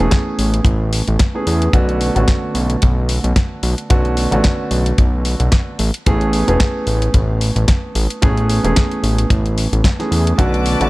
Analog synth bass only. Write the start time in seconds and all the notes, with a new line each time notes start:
0.39 A1
0.65 A1
1.08 A1
1.47 E2
1.73 B1
2.16 A1
2.54 B1
2.83 B1
3.24 B1
3.63 B1
3.90 B1
4.32 A1
4.71 B1
4.98 B1
5.40 B1
5.79 A1
6.07 A1
6.48 E1
6.87 A1
7.14 A1
7.56 A1
7.95 A1
8.23 A1
8.64 E1
9.03 A1
9.30 A1
9.73 A1
10.11 E2
10.39 B1
10.80 A1